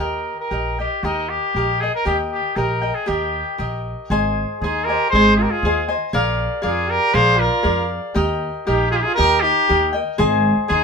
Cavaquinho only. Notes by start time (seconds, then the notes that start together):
0.00 G4 A#4 D#5 G5
0.51 G4 A#4 D#5 G5
0.79 A#4 D#5 G5
1.04 G4 A#4 D#5 G5
1.56 G4 A#4 D#5 G5
1.82 A#4 D#5 G5
2.05 G4 A#4 D#5 G5
2.56 G4 A#4 D#5 G5
2.82 A#4 D#5 G5
3.06 G4 A#4 D#5 G5
3.58 G4 A#4 D#5 G5
4.10 G#4 C5 D#5 G#5
4.64 G#4 C5 D#5 G#5
4.89 C5 D#5 G#5
5.14 G#4 C5 D#5 G#5
5.65 G#4 C5 D#5 G#5
5.88 C5 D#5 G#5
6.13 G#4 A#4 D5 F5
6.62 G#4 A#4 D5 F5
7.14 G#4 A#4 D5 F5
7.63 G#4 A#4 D5 F5
8.14 G4 A#4 D#5 G5
8.67 G4 A#4 D#5 G5
9.17 G4 A#4 D#5 G5
9.69 G4 A#4 D#5 G5
9.93 A#4 D#5 G5
10.18 G#4 C5 D#5 G#5
10.68 G#4 C5 D#5 G#5